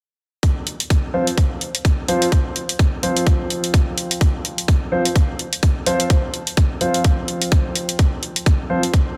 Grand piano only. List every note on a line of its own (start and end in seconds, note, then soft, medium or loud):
1.14 1.25 F3 medium
1.14 1.25 C4 medium
1.14 1.25 F4 medium
1.14 1.25 C5 medium
2.08 2.25 F3 medium
2.08 2.25 C4 medium
2.08 2.25 F4 medium
2.08 2.25 C5 medium
3.03 4.89 F3 medium
3.03 4.89 C4 medium
3.03 4.89 F4 medium
3.03 4.89 C5 medium
4.92 5.03 F3 medium
4.92 5.03 C4 medium
4.92 5.02 F4 medium
4.92 5.02 C5 medium
5.86 6.03 F3 medium
5.86 6.03 C4 medium
5.86 6.03 F4 medium
5.86 6.03 C5 loud
6.81 8.67 F3 medium
6.81 8.67 C4 medium
6.81 8.67 F4 medium
6.81 8.67 C5 medium
8.70 8.81 F3 medium
8.70 8.80 C4 medium
8.70 8.81 F4 medium
8.70 8.80 C5 medium